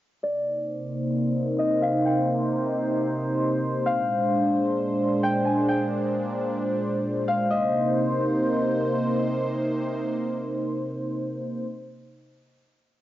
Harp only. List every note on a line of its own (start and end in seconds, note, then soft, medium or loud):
0.23 1.65 D5 medium
1.59 3.37 D#5 medium
1.82 3.48 F5 medium
2.05 3.61 G5 loud
3.86 5.52 F5 loud
5.23 5.51 G5 medium
5.45 5.75 G#5 medium
5.69 7.24 G5 loud
7.28 8.94 F5 medium
7.50 9.29 D#5 medium